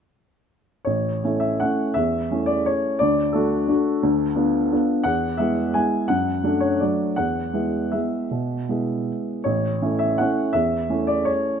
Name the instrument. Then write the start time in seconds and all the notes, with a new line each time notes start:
grand piano
0.85 A1 C#5
1.24 A3 C#4 E4
1.40 E5
1.60 A3 C#4 E4 F#5
1.94 E2 E5
2.31 A3 C#4 E4
2.46 D5
2.66 C#5
2.99 D2 D5
3.33 A3 D4 F#4 A4
3.68 A3 D4 F#4
4.03 D2
4.35 B3 D4 F4
4.72 B3 D4 F4
5.04 E2 F#5
5.37 G#3 B3 E4 E5
5.74 G#3 B3 E4 G#5
6.08 F#2 F#5
6.44 F#3 A3 D4
6.60 C#5
6.80 F#3 A3 D4 D5
7.16 E2 F#5
7.53 G#3 B3 E4
7.92 G#3 B3 E4 E5
8.31 B2
8.69 G#3 B3 E4
9.44 A1 C#5
9.82 A3 C#4 E4
9.99 E5
10.18 A3 C#4 E4 F#5
10.53 E2 E5
10.90 A3 C#4 E4
11.07 D5
11.25 C#5